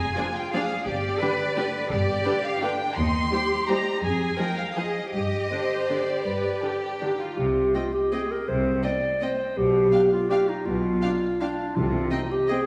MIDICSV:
0, 0, Header, 1, 8, 480
1, 0, Start_track
1, 0, Key_signature, -3, "minor"
1, 0, Tempo, 346220
1, 1201, Time_signature, 3, 2, 24, 8
1, 3117, Tempo, 356930
1, 5997, Tempo, 372902
1, 10797, Tempo, 364299
1, 16784, End_track
2, 0, Start_track
2, 0, Title_t, "Violin section"
2, 0, Program_c, 0, 48
2, 0, Note_on_c, 0, 80, 71
2, 474, Note_off_c, 0, 80, 0
2, 488, Note_on_c, 0, 79, 69
2, 721, Note_on_c, 0, 77, 72
2, 733, Note_off_c, 0, 79, 0
2, 1182, Note_on_c, 0, 74, 74
2, 1186, Note_off_c, 0, 77, 0
2, 2599, Note_off_c, 0, 74, 0
2, 2640, Note_on_c, 0, 74, 73
2, 3353, Note_off_c, 0, 74, 0
2, 3361, Note_on_c, 0, 77, 75
2, 3606, Note_off_c, 0, 77, 0
2, 3609, Note_on_c, 0, 79, 69
2, 4074, Note_on_c, 0, 84, 79
2, 4088, Note_off_c, 0, 79, 0
2, 5051, Note_off_c, 0, 84, 0
2, 5054, Note_on_c, 0, 82, 74
2, 5514, Note_on_c, 0, 80, 64
2, 5522, Note_off_c, 0, 82, 0
2, 5983, Note_off_c, 0, 80, 0
2, 6000, Note_on_c, 0, 79, 73
2, 6233, Note_on_c, 0, 77, 64
2, 6240, Note_off_c, 0, 79, 0
2, 6475, Note_on_c, 0, 75, 63
2, 6478, Note_off_c, 0, 77, 0
2, 6920, Note_off_c, 0, 75, 0
2, 6935, Note_on_c, 0, 75, 71
2, 7908, Note_off_c, 0, 75, 0
2, 7934, Note_on_c, 0, 74, 55
2, 9373, Note_off_c, 0, 74, 0
2, 10319, Note_on_c, 0, 79, 46
2, 10422, Note_off_c, 0, 79, 0
2, 10817, Note_on_c, 0, 79, 44
2, 10922, Note_off_c, 0, 79, 0
2, 11733, Note_on_c, 0, 79, 44
2, 11839, Note_off_c, 0, 79, 0
2, 12248, Note_on_c, 0, 79, 48
2, 12353, Note_off_c, 0, 79, 0
2, 13181, Note_on_c, 0, 79, 49
2, 13286, Note_off_c, 0, 79, 0
2, 13673, Note_on_c, 0, 79, 51
2, 13779, Note_off_c, 0, 79, 0
2, 14618, Note_on_c, 0, 79, 49
2, 14723, Note_off_c, 0, 79, 0
2, 15137, Note_on_c, 0, 79, 50
2, 15243, Note_off_c, 0, 79, 0
2, 16060, Note_on_c, 0, 79, 51
2, 16166, Note_off_c, 0, 79, 0
2, 16573, Note_on_c, 0, 79, 54
2, 16679, Note_off_c, 0, 79, 0
2, 16784, End_track
3, 0, Start_track
3, 0, Title_t, "Violin section"
3, 0, Program_c, 1, 48
3, 229, Note_on_c, 1, 74, 47
3, 230, Note_on_c, 1, 68, 49
3, 340, Note_off_c, 1, 74, 0
3, 341, Note_off_c, 1, 68, 0
3, 749, Note_on_c, 1, 74, 54
3, 753, Note_on_c, 1, 68, 50
3, 859, Note_off_c, 1, 74, 0
3, 864, Note_off_c, 1, 68, 0
3, 1683, Note_on_c, 1, 71, 54
3, 1692, Note_on_c, 1, 67, 50
3, 1794, Note_off_c, 1, 71, 0
3, 1803, Note_off_c, 1, 67, 0
3, 2168, Note_on_c, 1, 67, 51
3, 2173, Note_on_c, 1, 71, 51
3, 2279, Note_off_c, 1, 67, 0
3, 2284, Note_off_c, 1, 71, 0
3, 3118, Note_on_c, 1, 67, 52
3, 3121, Note_on_c, 1, 71, 53
3, 3226, Note_off_c, 1, 67, 0
3, 3229, Note_off_c, 1, 71, 0
3, 3623, Note_on_c, 1, 67, 52
3, 3624, Note_on_c, 1, 71, 54
3, 3731, Note_off_c, 1, 67, 0
3, 3732, Note_off_c, 1, 71, 0
3, 4556, Note_on_c, 1, 67, 51
3, 4557, Note_on_c, 1, 72, 50
3, 4664, Note_off_c, 1, 67, 0
3, 4665, Note_off_c, 1, 72, 0
3, 5038, Note_on_c, 1, 72, 51
3, 5041, Note_on_c, 1, 67, 47
3, 5145, Note_off_c, 1, 72, 0
3, 5149, Note_off_c, 1, 67, 0
3, 5974, Note_on_c, 1, 72, 42
3, 5979, Note_on_c, 1, 68, 44
3, 6078, Note_off_c, 1, 72, 0
3, 6082, Note_off_c, 1, 68, 0
3, 6473, Note_on_c, 1, 68, 46
3, 6480, Note_on_c, 1, 72, 44
3, 6576, Note_off_c, 1, 68, 0
3, 6583, Note_off_c, 1, 72, 0
3, 7426, Note_on_c, 1, 72, 63
3, 8344, Note_off_c, 1, 72, 0
3, 8415, Note_on_c, 1, 71, 55
3, 8885, Note_off_c, 1, 71, 0
3, 8905, Note_on_c, 1, 67, 55
3, 9626, Note_off_c, 1, 67, 0
3, 9628, Note_on_c, 1, 65, 44
3, 9847, Note_off_c, 1, 65, 0
3, 10321, Note_on_c, 1, 75, 44
3, 10424, Note_off_c, 1, 75, 0
3, 10808, Note_on_c, 1, 75, 46
3, 10913, Note_off_c, 1, 75, 0
3, 11737, Note_on_c, 1, 75, 46
3, 11843, Note_off_c, 1, 75, 0
3, 12235, Note_on_c, 1, 75, 47
3, 12340, Note_off_c, 1, 75, 0
3, 13183, Note_on_c, 1, 77, 46
3, 13289, Note_off_c, 1, 77, 0
3, 13691, Note_on_c, 1, 77, 45
3, 13796, Note_off_c, 1, 77, 0
3, 14620, Note_on_c, 1, 77, 51
3, 14725, Note_off_c, 1, 77, 0
3, 15135, Note_on_c, 1, 77, 51
3, 15240, Note_off_c, 1, 77, 0
3, 16050, Note_on_c, 1, 75, 55
3, 16156, Note_off_c, 1, 75, 0
3, 16547, Note_on_c, 1, 75, 55
3, 16652, Note_off_c, 1, 75, 0
3, 16784, End_track
4, 0, Start_track
4, 0, Title_t, "Cello section"
4, 0, Program_c, 2, 48
4, 0, Note_on_c, 2, 68, 59
4, 226, Note_off_c, 2, 68, 0
4, 226, Note_on_c, 2, 65, 53
4, 726, Note_off_c, 2, 65, 0
4, 730, Note_on_c, 2, 68, 58
4, 1196, Note_on_c, 2, 67, 64
4, 1200, Note_off_c, 2, 68, 0
4, 1673, Note_off_c, 2, 67, 0
4, 1675, Note_on_c, 2, 71, 64
4, 2164, Note_off_c, 2, 71, 0
4, 2181, Note_on_c, 2, 71, 62
4, 2631, Note_off_c, 2, 71, 0
4, 2638, Note_on_c, 2, 67, 63
4, 3609, Note_off_c, 2, 67, 0
4, 3615, Note_on_c, 2, 62, 55
4, 4090, Note_off_c, 2, 62, 0
4, 4092, Note_on_c, 2, 63, 59
4, 4558, Note_off_c, 2, 63, 0
4, 4576, Note_on_c, 2, 67, 55
4, 5510, Note_off_c, 2, 67, 0
4, 5522, Note_on_c, 2, 68, 58
4, 5987, Note_off_c, 2, 68, 0
4, 5993, Note_on_c, 2, 70, 55
4, 6468, Note_on_c, 2, 68, 52
4, 6469, Note_off_c, 2, 70, 0
4, 6938, Note_off_c, 2, 68, 0
4, 6947, Note_on_c, 2, 67, 51
4, 9557, Note_off_c, 2, 67, 0
4, 9847, Note_on_c, 2, 48, 55
4, 10231, Note_off_c, 2, 48, 0
4, 11272, Note_on_c, 2, 48, 57
4, 11662, Note_off_c, 2, 48, 0
4, 12714, Note_on_c, 2, 47, 60
4, 13107, Note_off_c, 2, 47, 0
4, 14143, Note_on_c, 2, 47, 61
4, 14545, Note_off_c, 2, 47, 0
4, 15592, Note_on_c, 2, 48, 66
4, 15982, Note_off_c, 2, 48, 0
4, 16784, End_track
5, 0, Start_track
5, 0, Title_t, "Clarinet"
5, 0, Program_c, 3, 71
5, 9369, Note_on_c, 3, 63, 59
5, 9836, Note_on_c, 3, 67, 72
5, 9855, Note_off_c, 3, 63, 0
5, 10321, Note_on_c, 3, 65, 64
5, 10340, Note_off_c, 3, 67, 0
5, 10556, Note_off_c, 3, 65, 0
5, 10564, Note_on_c, 3, 67, 66
5, 10796, Note_on_c, 3, 68, 77
5, 10815, Note_off_c, 3, 67, 0
5, 11050, Note_on_c, 3, 70, 73
5, 11070, Note_off_c, 3, 68, 0
5, 11278, Note_on_c, 3, 72, 79
5, 11298, Note_off_c, 3, 70, 0
5, 11743, Note_off_c, 3, 72, 0
5, 11751, Note_on_c, 3, 74, 73
5, 12260, Note_on_c, 3, 72, 75
5, 12280, Note_off_c, 3, 74, 0
5, 12715, Note_on_c, 3, 67, 75
5, 12734, Note_off_c, 3, 72, 0
5, 13429, Note_off_c, 3, 67, 0
5, 13437, Note_on_c, 3, 65, 70
5, 13662, Note_on_c, 3, 67, 75
5, 13682, Note_off_c, 3, 65, 0
5, 13910, Note_on_c, 3, 63, 67
5, 13930, Note_off_c, 3, 67, 0
5, 14132, Note_on_c, 3, 65, 70
5, 14152, Note_off_c, 3, 63, 0
5, 15135, Note_on_c, 3, 62, 80
5, 15154, Note_off_c, 3, 65, 0
5, 15592, Note_on_c, 3, 65, 75
5, 15612, Note_off_c, 3, 62, 0
5, 16062, Note_on_c, 3, 63, 67
5, 16082, Note_off_c, 3, 65, 0
5, 16317, Note_on_c, 3, 67, 81
5, 16336, Note_off_c, 3, 63, 0
5, 16556, Note_on_c, 3, 68, 83
5, 16576, Note_off_c, 3, 67, 0
5, 16784, Note_off_c, 3, 68, 0
5, 16784, End_track
6, 0, Start_track
6, 0, Title_t, "Viola section"
6, 0, Program_c, 4, 48
6, 243, Note_on_c, 4, 53, 49
6, 247, Note_on_c, 4, 62, 45
6, 354, Note_off_c, 4, 53, 0
6, 358, Note_off_c, 4, 62, 0
6, 748, Note_on_c, 4, 53, 52
6, 752, Note_on_c, 4, 62, 50
6, 859, Note_off_c, 4, 53, 0
6, 863, Note_off_c, 4, 62, 0
6, 1679, Note_on_c, 4, 62, 50
6, 1683, Note_on_c, 4, 50, 51
6, 1790, Note_off_c, 4, 62, 0
6, 1793, Note_off_c, 4, 50, 0
6, 2172, Note_on_c, 4, 50, 50
6, 2174, Note_on_c, 4, 62, 52
6, 2283, Note_off_c, 4, 50, 0
6, 2285, Note_off_c, 4, 62, 0
6, 3112, Note_on_c, 4, 62, 50
6, 3117, Note_on_c, 4, 50, 51
6, 3220, Note_off_c, 4, 62, 0
6, 3224, Note_off_c, 4, 50, 0
6, 3601, Note_on_c, 4, 50, 51
6, 3603, Note_on_c, 4, 62, 54
6, 3709, Note_off_c, 4, 50, 0
6, 3711, Note_off_c, 4, 62, 0
6, 4553, Note_on_c, 4, 55, 48
6, 4559, Note_on_c, 4, 63, 49
6, 4660, Note_off_c, 4, 55, 0
6, 4666, Note_off_c, 4, 63, 0
6, 5062, Note_on_c, 4, 55, 46
6, 5064, Note_on_c, 4, 63, 49
6, 5169, Note_off_c, 4, 55, 0
6, 5172, Note_off_c, 4, 63, 0
6, 5994, Note_on_c, 4, 63, 44
6, 6000, Note_on_c, 4, 53, 48
6, 6097, Note_off_c, 4, 63, 0
6, 6102, Note_off_c, 4, 53, 0
6, 6476, Note_on_c, 4, 63, 45
6, 6478, Note_on_c, 4, 53, 44
6, 6579, Note_off_c, 4, 63, 0
6, 6581, Note_off_c, 4, 53, 0
6, 7435, Note_on_c, 4, 62, 38
6, 7444, Note_on_c, 4, 50, 40
6, 7538, Note_off_c, 4, 62, 0
6, 7547, Note_off_c, 4, 50, 0
6, 7945, Note_on_c, 4, 50, 42
6, 7945, Note_on_c, 4, 62, 42
6, 8048, Note_off_c, 4, 50, 0
6, 8048, Note_off_c, 4, 62, 0
6, 8873, Note_on_c, 4, 50, 38
6, 8882, Note_on_c, 4, 62, 37
6, 8976, Note_off_c, 4, 50, 0
6, 8985, Note_off_c, 4, 62, 0
6, 9367, Note_on_c, 4, 50, 39
6, 9374, Note_on_c, 4, 62, 36
6, 9470, Note_off_c, 4, 50, 0
6, 9477, Note_off_c, 4, 62, 0
6, 10319, Note_on_c, 4, 60, 42
6, 10422, Note_off_c, 4, 60, 0
6, 10801, Note_on_c, 4, 60, 43
6, 10906, Note_off_c, 4, 60, 0
6, 11753, Note_on_c, 4, 60, 45
6, 11859, Note_off_c, 4, 60, 0
6, 12250, Note_on_c, 4, 60, 44
6, 12355, Note_off_c, 4, 60, 0
6, 13181, Note_on_c, 4, 62, 45
6, 13286, Note_off_c, 4, 62, 0
6, 13674, Note_on_c, 4, 62, 53
6, 13780, Note_off_c, 4, 62, 0
6, 14639, Note_on_c, 4, 62, 52
6, 14745, Note_off_c, 4, 62, 0
6, 15131, Note_on_c, 4, 62, 53
6, 15237, Note_off_c, 4, 62, 0
6, 16066, Note_on_c, 4, 60, 46
6, 16171, Note_off_c, 4, 60, 0
6, 16569, Note_on_c, 4, 60, 52
6, 16674, Note_off_c, 4, 60, 0
6, 16784, End_track
7, 0, Start_track
7, 0, Title_t, "Timpani"
7, 0, Program_c, 5, 47
7, 15600, Note_on_c, 5, 48, 66
7, 16266, Note_off_c, 5, 48, 0
7, 16784, End_track
8, 0, Start_track
8, 0, Title_t, "Double bass section"
8, 0, Program_c, 6, 48
8, 1195, Note_on_c, 6, 31, 65
8, 1569, Note_off_c, 6, 31, 0
8, 2641, Note_on_c, 6, 31, 65
8, 3014, Note_off_c, 6, 31, 0
8, 4092, Note_on_c, 6, 39, 70
8, 4464, Note_off_c, 6, 39, 0
8, 5518, Note_on_c, 6, 41, 67
8, 5891, Note_off_c, 6, 41, 0
8, 6951, Note_on_c, 6, 43, 52
8, 7331, Note_off_c, 6, 43, 0
8, 8395, Note_on_c, 6, 43, 52
8, 8771, Note_off_c, 6, 43, 0
8, 9843, Note_on_c, 6, 36, 55
8, 10229, Note_off_c, 6, 36, 0
8, 11266, Note_on_c, 6, 36, 58
8, 11659, Note_off_c, 6, 36, 0
8, 12711, Note_on_c, 6, 35, 56
8, 13105, Note_off_c, 6, 35, 0
8, 14139, Note_on_c, 6, 35, 58
8, 14543, Note_off_c, 6, 35, 0
8, 15588, Note_on_c, 6, 36, 58
8, 15980, Note_off_c, 6, 36, 0
8, 16784, End_track
0, 0, End_of_file